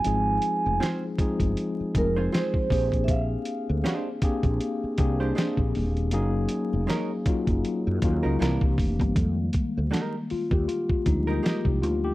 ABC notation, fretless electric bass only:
X:1
M:4/4
L:1/16
Q:"Swing 16ths" 1/4=79
K:Fdor
V:1 name="Fretless electric bass" clef=bass
A,,,2 z F,,, z3 G,,, z2 F,,,2 z2 B,,,2- | B,,,2 z D,, z3 B,,, z2 C,,2 z B,,, E,,,2 | _G,,,2 z F,,, z3 G,,, z _G,, E,, _D,, C,, C,, F,,, =G,,, | F,,2 z D,, z3 E,, z2 D,,2 z C,, D,,2 |]